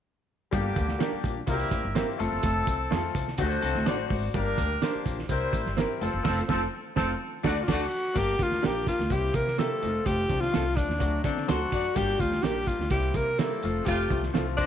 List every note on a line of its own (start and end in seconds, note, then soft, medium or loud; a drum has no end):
0.51 0.70 G1 loud
0.51 1.23 D3 medium
0.51 0.87 G3 medium
0.51 0.87 A#3 medium
0.51 1.23 A#3 medium
0.51 0.88 D4 medium
0.51 1.23 G4 medium
0.51 0.88 G4 medium
0.51 kick loud
0.51 closed hi-hat medium
0.76 0.94 D2 medium
0.76 kick medium
0.76 closed hi-hat medium
0.89 snare soft
0.99 1.35 G3 medium
0.99 1.35 A#3 medium
0.99 1.10 D4 medium
0.99 1.36 D4 medium
0.99 1.11 G4 medium
0.99 1.36 G4 medium
0.99 1.11 A#4 medium
0.99 snare loud
0.99 closed hi-hat medium
1.12 muted upright bass stroke soft
1.24 1.41 A#1 medium
1.24 kick medium
1.24 closed hi-hat medium
1.46 1.65 C2 medium
1.46 1.94 G3 medium
1.46 1.82 A#3 medium
1.46 1.83 C4 medium
1.46 1.83 E4 medium
1.46 1.95 E4 medium
1.46 1.54 F4 medium
1.46 1.95 A#4 medium
1.46 kick medium
1.46 closed hi-hat medium
1.54 1.86 G4 medium
1.60 closed hi-hat soft
1.71 1.80 A1 medium
1.71 kick medium
1.71 closed hi-hat medium
1.85 2.02 G1 medium
1.95 2.19 A#3 medium
1.95 2.17 C4 medium
1.95 2.05 C4 medium
1.95 2.20 E4 medium
1.95 2.06 E4 medium
1.95 2.20 G4 medium
1.95 2.06 A#4 medium
1.95 snare loud
1.95 closed hi-hat medium
2.18 2.29 F1 medium
2.18 3.13 F3 medium
2.18 2.76 A3 medium
2.18 2.76 C4 medium
2.18 3.13 C4 medium
2.18 2.77 F4 medium
2.18 3.13 A4 medium
2.18 2.77 A4 medium
2.18 closed hi-hat medium
2.32 2.41 F#1 medium
2.43 2.61 F1 loud
2.43 kick loud
2.43 closed hi-hat medium
2.67 2.85 C2 medium
2.67 kick medium
2.67 closed hi-hat medium
2.90 3.09 F2 medium
2.90 3.26 A3 medium
2.90 3.26 C4 medium
2.90 3.01 C4 medium
2.90 3.26 F4 medium
2.90 3.01 F4 medium
2.90 2.97 G#4 medium
2.90 3.02 A4 medium
2.90 snare loud
2.90 closed hi-hat medium
2.97 3.29 A4 medium
3.15 3.32 C2 medium
3.15 kick medium
3.15 closed hi-hat medium
3.28 snare soft
3.38 3.56 D2 loud
3.38 3.74 A3 medium
3.38 3.62 A3 medium
3.38 4.09 A3 medium
3.38 3.74 D4 medium
3.38 3.61 F#4 medium
3.38 3.74 F#4 medium
3.38 4.09 F#4 medium
3.38 3.45 G4 medium
3.38 4.09 C5 medium
3.38 kick medium
3.38 closed hi-hat medium
3.46 3.77 A4 medium
3.51 closed hi-hat soft
3.62 3.72 C2 medium
3.62 3.86 C4 medium
3.62 3.85 A4 medium
3.62 closed hi-hat medium
3.75 3.83 D2 medium
3.75 snare soft
3.86 4.04 A1 medium
3.86 4.21 A3 medium
3.86 3.96 D4 medium
3.86 4.21 D4 medium
3.86 3.92 D#4 medium
3.86 3.97 F#4 medium
3.86 4.32 F#4 medium
3.86 3.97 A4 medium
3.86 4.22 C5 medium
3.86 4.32 D5 medium
3.86 snare loud
3.86 closed hi-hat medium
3.93 4.25 F#4 medium
4.10 4.28 G#1 medium
4.10 kick medium
4.10 open hi-hat soft
4.34 4.52 G1 loud
4.34 5.04 G3 medium
4.34 4.69 A#3 medium
4.34 4.69 D4 medium
4.34 5.04 D4 medium
4.34 4.70 G4 medium
4.34 5.05 A#4 medium
4.34 4.70 A#4 medium
4.34 kick loud
4.34 closed hi-hat medium
4.58 4.75 D2 medium
4.58 kick medium
4.58 closed hi-hat medium
4.82 5.17 A#3 medium
4.82 4.92 D4 medium
4.82 5.17 D4 medium
4.82 4.92 G4 medium
4.82 5.17 G4 medium
4.82 4.92 A#4 medium
4.82 5.18 C5 medium
4.82 snare medium
4.82 closed hi-hat medium
4.95 muted upright bass stroke soft
5.06 5.23 A#1 medium
5.06 kick medium
5.06 closed hi-hat medium
5.19 snare soft
5.29 5.46 C2 medium
5.29 5.76 G3 medium
5.29 5.64 C4 medium
5.29 5.76 E4 medium
5.29 5.65 E4 medium
5.29 5.65 G4 medium
5.29 5.65 A#4 medium
5.29 5.76 C5 medium
5.29 kick medium
5.29 closed hi-hat medium
5.53 5.62 A1 medium
5.53 kick medium
5.53 closed hi-hat medium
5.66 5.83 G1 medium
5.66 snare soft
5.77 5.87 C4 medium
5.77 6.00 C4 medium
5.77 5.87 E4 medium
5.77 6.01 E4 medium
5.77 6.02 G4 medium
5.77 5.87 A#4 medium
5.77 6.02 A#4 medium
5.77 snare loud
5.77 closed hi-hat medium
6.01 6.10 F1 medium
6.01 6.24 F3 medium
6.01 6.22 C4 medium
6.01 6.23 C4 medium
6.01 6.23 F4 medium
6.01 6.24 A4 medium
6.01 6.24 C5 medium
6.01 closed hi-hat medium
6.14 6.22 F#1 medium
6.24 6.41 F1 medium
6.24 6.37 F3 medium
6.24 6.40 C4 medium
6.24 6.37 C4 medium
6.24 6.41 C4 medium
6.24 6.41 F4 medium
6.24 6.37 A4 medium
6.24 6.41 A4 medium
6.24 6.42 A4 medium
6.24 6.41 C5 medium
6.24 kick medium
6.24 snare medium
6.24 crash medium
6.48 6.65 F1 medium
6.48 6.61 F3 medium
6.48 6.65 C4 medium
6.48 6.61 C4 medium
6.48 6.65 F4 medium
6.48 6.61 A4 medium
6.48 6.65 A4 medium
6.48 kick medium
6.48 snare medium
6.95 7.13 F1 medium
6.95 7.08 F3 medium
6.95 7.08 C4 loud
6.95 7.12 C4 medium
6.95 7.12 F4 medium
6.95 7.13 F4 medium
6.95 7.08 A4 medium
6.95 7.13 A4 medium
6.95 kick medium
6.95 snare loud
7.43 7.60 D2 medium
7.43 7.56 D3 medium
7.43 7.56 A3 medium
7.43 7.60 D4 medium
7.43 7.61 D4 medium
7.43 7.56 F#4 medium
7.43 7.60 F#4 loud
7.43 7.61 F#4 medium
7.43 7.60 A4 medium
7.43 7.61 A4 medium
7.43 7.60 D5 medium
7.43 7.61 D5 medium
7.43 kick loud
7.43 snare loud
7.50 7.63 F#4 medium
7.63 7.72 F4 medium
7.67 7.84 D2 medium
7.67 7.80 D3 medium
7.67 7.80 A3 medium
7.67 7.84 D4 medium
7.67 7.84 F#4 medium
7.67 7.80 F#4 medium
7.67 7.84 F#4 medium
7.67 8.20 F#4 medium
7.67 7.84 A4 medium
7.67 7.85 A4 medium
7.67 7.84 D5 medium
7.67 7.85 D5 medium
7.67 kick loud
7.67 snare loud
7.67 crash medium
7.73 7.87 F#4 medium
8.14 8.33 G1 medium
8.14 8.32 A#3 medium
8.14 8.32 D4 medium
8.14 8.33 G4 medium
8.14 8.33 A#4 loud
8.14 kick loud
8.14 closed hi-hat medium
8.18 8.44 G4 loud
8.38 8.57 D2 medium
8.38 8.56 A#3 medium
8.38 8.56 D4 soft
8.38 8.56 G4 soft
8.38 8.57 A#4 medium
8.38 kick medium
8.38 closed hi-hat medium
8.43 8.67 F4 medium
8.52 snare soft
8.62 8.89 A#1 medium
8.62 8.97 A#3 medium
8.62 8.97 D4 medium
8.62 8.73 D4 medium
8.62 8.98 G4 medium
8.62 8.73 G4 medium
8.62 8.69 A4 medium
8.62 8.73 A#4 medium
8.62 snare medium
8.62 closed hi-hat medium
8.66 8.88 G4 medium
8.66 9.01 A#4 medium
8.87 9.14 F4 medium
8.87 kick medium
8.87 closed hi-hat medium
8.99 9.08 D2 medium
8.99 snare soft
9.10 9.28 C2 loud
9.10 9.45 A#3 medium
9.10 9.46 C4 medium
9.10 9.46 E4 medium
9.10 9.46 G4 medium
9.10 9.37 G4 medium
9.10 kick medium
9.10 closed hi-hat medium
9.34 9.69 C3 medium
9.34 9.58 A#4 medium
9.34 kick medium
9.34 closed hi-hat medium
9.47 snare soft
9.58 9.82 A#3 medium
9.58 9.68 C4 medium
9.58 9.82 C4 medium
9.58 9.68 E4 medium
9.58 9.83 E4 medium
9.58 9.83 G4 medium
9.58 10.08 A4 medium
9.58 9.69 A#4 medium
9.58 snare loud
9.58 closed hi-hat medium
9.82 10.00 F1 medium
9.82 10.20 F3 medium
9.82 10.20 A3 medium
9.82 10.21 C4 medium
9.82 9.88 D#4 medium
9.82 closed hi-hat medium
9.89 10.24 F4 medium
10.06 10.23 F1 medium
10.06 10.42 G4 loud
10.06 kick loud
10.06 closed hi-hat medium
10.28 10.47 C2 medium
10.28 10.47 F3 medium
10.28 10.47 A3 soft
10.28 10.47 C4 medium
10.28 10.48 D4 medium
10.28 kick medium
10.28 closed hi-hat medium
10.40 10.78 F4 medium
10.40 snare soft
10.51 10.80 C2 medium
10.51 10.87 F3 medium
10.51 10.88 A3 medium
10.51 10.88 C4 medium
10.51 10.64 C4 medium
10.51 10.88 F4 medium
10.51 10.64 F4 medium
10.51 snare loud
10.51 closed hi-hat medium
10.55 10.64 A4 medium
10.76 11.24 D4 medium
10.76 kick medium
10.76 closed hi-hat medium
10.89 10.98 D#2 medium
10.89 snare soft
10.99 11.18 D2 loud
10.99 11.35 F#3 medium
10.99 11.36 A3 medium
10.99 11.36 D4 medium
10.99 11.37 F#4 medium
10.99 kick medium
10.99 closed hi-hat medium
11.24 11.42 D3 medium
11.24 11.48 C4 medium
11.24 11.50 D4 medium
11.24 11.48 A4 medium
11.24 kick medium
11.24 closed hi-hat medium
11.37 snare soft
11.47 11.66 D2 medium
11.47 11.83 F#3 medium
11.47 11.83 A3 medium
11.47 11.84 D4 medium
11.47 11.59 D4 medium
11.47 11.98 F#4 medium
11.47 11.59 F#4 medium
11.47 11.84 A4 medium
11.47 11.59 A4 medium
11.47 11.72 C5 medium
11.47 snare loud
11.47 closed hi-hat medium
11.72 11.90 F#2 medium
11.72 12.18 F#4 medium
11.72 12.18 D5 medium
11.72 kick medium
11.72 closed hi-hat medium
11.95 12.14 G1 loud
11.95 12.13 G3 medium
11.95 12.13 A#3 medium
11.95 12.14 D4 medium
11.95 12.22 G4 medium
11.95 12.14 G4 loud
11.95 kick loud
11.95 closed hi-hat medium
12.18 12.37 D2 medium
12.18 12.37 G3 medium
12.18 12.37 A#3 medium
12.18 12.37 D4 medium
12.18 12.44 F4 medium
12.18 12.38 G4 medium
12.18 kick medium
12.18 closed hi-hat medium
12.32 snare soft
12.43 12.69 A#1 medium
12.43 12.78 G3 medium
12.43 12.79 A#3 medium
12.43 12.53 D4 medium
12.43 12.79 D4 medium
12.43 12.50 F4 medium
12.43 12.69 G4 medium
12.43 12.54 G4 medium
12.43 12.54 A#4 medium
12.43 snare loud
12.43 closed hi-hat medium
12.50 12.82 G4 medium
12.67 12.90 F4 medium
12.67 kick medium
12.67 closed hi-hat medium
12.79 12.88 D2 medium
12.79 snare soft
12.90 13.08 C2 loud
12.90 13.26 G3 medium
12.90 13.27 A#3 medium
12.90 13.27 C4 medium
12.90 13.27 E4 medium
12.90 13.17 G4 medium
12.90 kick medium
12.90 closed hi-hat medium
13.14 13.49 C3 medium
13.14 13.41 A#4 medium
13.14 kick loud
13.14 closed hi-hat medium
13.38 13.63 G3 medium
13.38 13.63 A#3 medium
13.38 13.49 C4 medium
13.38 13.63 C4 medium
13.38 13.49 E4 medium
13.38 13.64 E4 medium
13.38 13.87 A4 medium
13.38 13.50 A#4 medium
13.38 snare loud
13.38 closed hi-hat medium
13.63 13.81 F1 medium
13.63 14.01 F3 medium
13.63 14.02 A3 medium
13.63 14.02 C4 medium
13.63 14.02 F4 medium
13.63 closed hi-hat medium
13.86 14.04 F1 loud
13.86 14.21 C3 medium
13.86 14.21 A3 medium
13.86 14.21 F4 loud
13.86 14.22 G4 medium
13.86 kick loud
13.86 closed hi-hat medium
14.10 14.28 C2 medium
14.10 14.28 F3 medium
14.10 14.28 A3 medium
14.10 14.29 C4 soft
14.10 14.29 F4 medium
14.10 kick medium
14.10 closed hi-hat medium
14.23 snare soft
14.34 14.61 C2 medium
14.34 14.66 F3 medium
14.34 14.66 A3 medium
14.34 14.44 C4 medium
14.34 14.66 C4 medium
14.34 14.45 F4 medium
14.34 14.66 F4 medium
14.34 14.45 A4 medium
14.34 snare loud
14.34 closed hi-hat medium
14.57 14.66 D4 loud
14.57 14.66 D#4 medium
14.57 14.66 C5 medium
14.57 kick medium
14.57 closed hi-hat medium